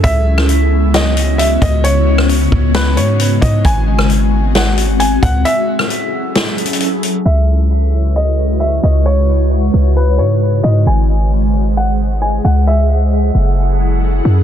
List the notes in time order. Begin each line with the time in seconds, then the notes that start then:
Already playing: E4
0.04 C#2 C#3 G#3 B3 C#4 F#4 E5, kick, closed hi-hat
0.38 cross-stick
0.49 closed hi-hat
0.94 D#5, snare, closed hi-hat
1.17 closed hi-hat
1.38 E5, closed hi-hat
1.62 C#2 D#5, kick, closed hi-hat
1.84 C#5, closed hi-hat
2.18 cross-stick
2.29 closed hi-hat
2.52 C#2, kick
2.74 B4, snare, closed hi-hat
2.97 G#2 C#5, closed hi-hat
3.20 closed hi-hat
3.42 G#2 D#5, kick, closed hi-hat
3.65 G#1 C4 F#4 G#5, kick, closed hi-hat
3.99 cross-stick
4.10 closed hi-hat
4.55 F#5, snare, closed hi-hat
4.78 closed hi-hat
5.00 G#5, closed hi-hat
5.22 C#2 F#5, kick, closed hi-hat
5.45 F#3 C#4 E4 G#4 A4 E5, closed hi-hat
5.79 cross-stick
5.90 closed hi-hat
6.35 snare, closed hi-hat
6.58 closed hi-hat
6.66 closed hi-hat
6.73 closed hi-hat
6.80 closed hi-hat
7.03 closed hi-hat
7.26 C#2 C#3 G#3 E4 F#4 B4 C#5 E5
8.16 D#5
8.60 E5
8.83 C#2 D#5
9.06 C#5
9.74 C#2
9.96 B4
10.18 G#2 C#5
10.63 G#2 D#5
10.86 G#1 G#3 G#4 C5 D#5 F#5 G#5
11.77 F#5
12.22 G#5
12.45 C#2 F#5
12.67 F#3 E4 A4 E5
13.35 F#1
14.25 F#2